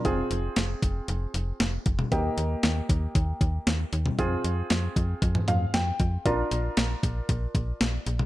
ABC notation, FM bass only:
X:1
M:4/4
L:1/8
Q:1/4=116
K:Fdor
V:1 name="FM bass" clef=bass
F,,, F,,, F,,, F,,, F,,, F,,, F,,, F,,, | E,, E,, E,, E,, E,, E,, E,, E,, | F,, F,, F,, F,, F,, F,, F,, F,, | B,,, B,,, B,,, B,,, B,,, B,,, B,,, B,,, |]